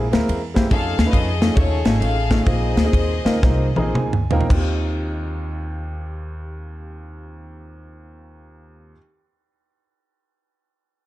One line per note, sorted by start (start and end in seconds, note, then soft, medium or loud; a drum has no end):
0.11 0.26 D2 medium
0.11 0.39 G#3 medium
0.11 0.40 A#3 medium
0.11 0.40 C4 medium
0.11 0.40 E4 medium
0.11 0.40 A#4 loud
0.11 snare loud
0.11 ride medium
0.29 0.65 E2 loud
0.29 ride medium
0.54 0.66 G#3 medium
0.54 0.66 A#3 medium
0.54 0.67 C4 medium
0.54 0.66 E4 medium
0.54 0.67 G4 loud
0.54 kick medium
0.54 snare loud
0.54 ride medium
0.70 0.95 F2 loud
0.70 0.99 A3 medium
0.70 1.00 C#4 medium
0.70 1.00 D#4 medium
0.70 1.00 F4 medium
0.70 1.13 G#4 medium
0.70 1.00 G#4 medium
0.70 1.13 A4 medium
0.70 1.11 F5 loud
0.70 kick loud
0.70 ride medium
0.98 1.11 D#2 medium
0.98 snare loud
0.98 ride medium
1.05 1.29 A3 medium
1.05 1.29 C#4 medium
1.05 1.29 D#4 medium
1.05 1.30 F4 medium
1.05 1.30 B4 medium
1.13 1.50 F2 loud
1.13 1.55 G#4 medium
1.13 1.55 A4 medium
1.13 1.57 D#5 loud
1.13 kick loud
1.13 ride medium
1.41 1.52 A3 medium
1.41 1.52 C#4 medium
1.41 1.53 D#4 medium
1.41 1.53 F4 medium
1.41 1.53 G#4 medium
1.41 snare loud
1.41 ride medium
1.56 1.81 D#2 loud
1.56 1.77 A3 medium
1.56 1.77 C#4 medium
1.56 1.77 D#4 medium
1.56 1.78 F4 medium
1.56 2.00 G#4 medium
1.56 1.78 G#4 medium
1.56 2.00 A4 medium
1.56 2.01 C#5 loud
1.56 kick loud
1.56 ride medium
1.85 1.99 G#1 medium
1.85 2.14 A3 medium
1.85 2.14 C#4 medium
1.85 2.14 D#4 medium
1.85 2.14 F4 medium
1.85 2.15 G#5 medium
1.85 snare loud
1.85 ride medium
2.01 2.39 A1 loud
2.01 2.43 G#4 medium
2.01 2.43 A4 medium
2.01 2.47 F5 loud
2.01 ride medium
2.30 2.42 A3 medium
2.30 2.42 C#4 medium
2.30 2.42 D#4 medium
2.30 2.43 F4 medium
2.30 2.43 G#4 medium
2.30 kick medium
2.30 snare loud
2.30 ride medium
2.46 2.73 A#1 loud
2.46 3.22 A#2 medium
2.46 2.78 A#3 medium
2.46 2.78 C4 medium
2.46 2.78 D#4 medium
2.46 2.78 F4 medium
2.46 3.90 G#4 medium
2.46 2.79 G#4 medium
2.46 3.91 C5 medium
2.46 3.90 D#5 medium
2.46 kick loud
2.46 ride medium
2.76 2.91 D2 medium
2.76 snare loud
2.76 ride medium
2.84 3.11 A#3 medium
2.84 3.11 C4 medium
2.84 3.11 D#4 medium
2.84 3.12 F4 medium
2.84 3.12 G#4 medium
2.93 3.20 D#2 loud
2.93 kick loud
2.93 ride medium
3.25 3.40 D2 medium
3.25 3.38 A#3 medium
3.25 3.38 C4 medium
3.25 3.38 D#4 medium
3.25 3.38 F4 medium
3.25 3.38 A#4 loud
3.25 snare loud
3.25 ride medium
3.43 3.71 C2 loud
3.43 3.67 A#3 medium
3.43 3.67 C4 medium
3.43 3.67 D#4 medium
3.43 3.67 F4 medium
3.43 3.67 A#4 medium
3.43 kick loud
3.43 snare medium
3.76 3.92 A#1 medium
3.76 4.10 A#3 medium
3.76 4.10 C4 medium
3.76 4.10 D#4 medium
3.76 4.10 F4 medium
3.76 4.10 G#4 loud
3.76 3.94 A#5 medium
3.76 high tom medium
3.94 4.41 D2 medium
3.94 4.29 G#5 medium
3.94 mid tom medium
4.13 mid tom medium
4.31 4.45 A#3 medium
4.31 4.45 C4 medium
4.31 4.45 D#4 medium
4.31 4.45 F4 medium
4.31 4.45 A#4 loud
4.31 4.49 G5 medium
4.31 floor tom loud
4.41 floor tom medium
4.49 8.92 D#2 loud
4.49 8.93 D#2 medium
4.49 8.91 C4 medium
4.49 8.93 D#4 medium
4.49 8.95 F4 medium
4.49 kick loud
4.49 crash medium
4.55 8.97 G4 medium